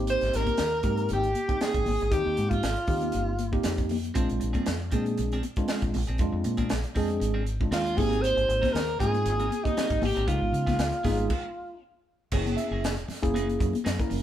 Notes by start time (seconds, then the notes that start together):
Already playing: G#1 A#3 C4 D#4 G4
0.07 C5, closed hi-hat
0.21 G#1, snare, closed hi-hat
0.34 G#1 A#4, snare, closed hi-hat
0.45 kick, closed hi-hat, high conga
0.57 D#2, snare, closed hi-hat
0.83 G#2 A#3 C4 D#4 G4, kick, closed hi-hat, low conga
0.97 closed hi-hat
1.09 G#1, closed hi-hat
1.13 G4
1.23 closed hi-hat
1.35 closed hi-hat, high conga
1.48 A#3 C4 D#4 G5, kick, closed hi-hat
1.61 G#4, snare, closed hi-hat
1.74 G#1, kick, closed hi-hat
1.86 G#1, open hi-hat, high conga, low conga
2.00 G#1, closed hi-hat
2.11 D#2 A#3 C4 D#4 G4, kick, closed hi-hat
2.27 D#2
2.37 G#2, closed hi-hat
2.50 F4, kick, closed hi-hat, high conga
2.63 G#1, snare, closed hi-hat
2.76 closed hi-hat
2.87 D#2 A#3 C4 D#4 G4, kick, open hi-hat, low conga
3.01 closed hi-hat, high conga
3.12 G1, closed hi-hat
3.39 closed hi-hat, high conga
3.52 A#3 C4 D#4 G4, kick
3.63 F2, snare, closed hi-hat
3.78 kick, closed hi-hat
3.89 open hi-hat, high conga, low conga
4.04 closed hi-hat
4.14 A#1 F3 G#3 C4 D4 F4 G#4, kick, closed hi-hat
4.29 A#1, muted clean electric guitar stroke, closed hi-hat
4.40 A#1, muted clean electric guitar stroke, closed hi-hat
4.53 F3 C4 D4 G#4, kick, closed hi-hat, high conga
4.66 F2, snare, closed hi-hat
4.80 muted clean electric guitar stroke
4.91 A#2 F3 G#3 C4 D4 G#4, kick, closed hi-hat, low conga
5.05 muted clean electric guitar stroke, closed hi-hat, high conga
5.18 A#1, muted clean electric guitar stroke, closed hi-hat
5.32 F3 C4 D4 G#4, closed hi-hat
5.43 muted clean electric guitar stroke, closed hi-hat, high conga
5.56 G#3 C4 D4 F4, kick, closed hi-hat
5.68 F3 C4 D4 G#4, snare, closed hi-hat
5.82 A#1, muted clean electric guitar stroke, kick, closed hi-hat
5.94 A#1, muted clean electric guitar stroke, open hi-hat, high conga, low conga
6.07 A#1 C4 D4 G#4, closed hi-hat
6.18 F2 G#3 C4 D4 F4, kick, closed hi-hat
6.33 F2, muted clean electric guitar stroke
6.44 A#2, muted clean electric guitar stroke, closed hi-hat
6.57 F3 C4 D4 G#4, kick, closed hi-hat, high conga
6.70 A#1, snare, closed hi-hat
6.84 muted clean electric guitar stroke, closed hi-hat
6.95 F2 F3 G#3 C4 D4 G#4, kick, open hi-hat, low conga
7.08 muted clean electric guitar stroke, closed hi-hat, high conga
7.20 G#1, muted clean electric guitar stroke, closed hi-hat
7.34 F3 C4 D4 G#4
7.45 muted clean electric guitar stroke, closed hi-hat
7.61 G#3 C4 D4 F4, kick
7.71 D#2 F3 C4 D4 F4 G#4, snare, closed hi-hat
7.84 muted clean electric guitar stroke, closed hi-hat
7.95 G#1 D#4 G#4, muted clean electric guitar stroke, kick, open hi-hat, high conga, low conga
7.99 A#3 C4 G4 G#4
8.09 C4 D#4 A#4, closed hi-hat
8.22 C5, closed hi-hat
8.36 G#1, muted clean electric guitar stroke, closed hi-hat
8.48 G#1, muted clean electric guitar stroke, closed hi-hat
8.62 G3 C4 D#4 A#4, kick, snare, closed hi-hat, high conga
8.73 D#2 A#4, snare, closed hi-hat
8.88 muted clean electric guitar stroke
8.99 G#2 G3 A#3 C4 D#4 F4 G#4 A#4, kick, closed hi-hat, low conga
9.14 muted clean electric guitar stroke, closed hi-hat, high conga
9.26 G#1, muted clean electric guitar stroke, closed hi-hat
9.40 G3 C4 D#4 A#4, closed hi-hat
9.51 muted clean electric guitar stroke, closed hi-hat, high conga
9.64 A#3 C4 D#4 G4, kick, closed hi-hat
9.77 G3 C4 D#4 A#4, snare, closed hi-hat
9.90 G#1, kick, closed hi-hat
10.01 G#1 G4, muted clean electric guitar stroke, open hi-hat, high conga, low conga
10.05 G4
10.15 G#1 C4 D#4 A#4, closed hi-hat
10.27 C#2 G#3 B3 D#4 F4 G#4, kick, closed hi-hat
10.31 F4
10.41 G#1, muted clean electric guitar stroke
10.52 C#3, muted clean electric guitar stroke, closed hi-hat
10.67 G#3 B3 F4 G#4, kick, snare, closed hi-hat, high conga
10.78 C#2, snare, closed hi-hat
10.92 muted clean electric guitar stroke, closed hi-hat
11.04 G#1 G#3 B3 D#4 F4 G#4, kick, snare, open hi-hat, high conga, low conga
11.17 muted clean electric guitar stroke, closed hi-hat, high conga
11.30 kick, crash
12.31 F#1 E3 A#3 C#4 E4 G#4 C#5, kick, crash
12.46 muted clean electric guitar stroke, closed hi-hat, high conga
12.57 E5, muted clean electric guitar stroke, closed hi-hat
12.71 F#1 A#3 C#4 G#4
12.84 muted clean electric guitar stroke, snare, closed hi-hat
12.97 E1, closed hi-hat
13.08 muted fingered electric bass stroke, snare, open hi-hat, low conga
13.22 F#1 A#3 C#4 E4 G#4, muted clean electric guitar stroke, kick, closed hi-hat
13.34 E3 A#3 C#4 G#4, closed hi-hat, high conga
13.49 muted clean electric guitar stroke, closed hi-hat
13.59 F#2, muted clean electric guitar stroke, kick, closed hi-hat
13.73 muted fingered electric bass stroke, closed hi-hat, high conga
13.84 F#2 E3 A#3 C#4 G#4, snare, closed hi-hat
13.98 A#3 C#4 E4 A#4, muted clean electric guitar stroke, kick, closed hi-hat
14.09 F#1, muted clean electric guitar stroke, open hi-hat, low conga